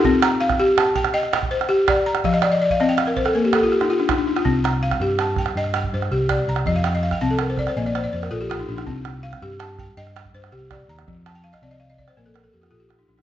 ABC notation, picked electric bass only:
X:1
M:12/8
L:1/8
Q:3/8=109
K:Cdor
V:1 name="Picked electric bass" clef=bass
z12 | z12 | C,,3 G,,3 G,,2 G,, C,,2 C,, | F,,3 C,,3 B,,,2 F,, B,,,2 B,,, |
C,,3 G,,3 G,,2 G,, C,,2 E,, | F,,3 C,,3 B,,,2 F,, B,,,2 B,,, |]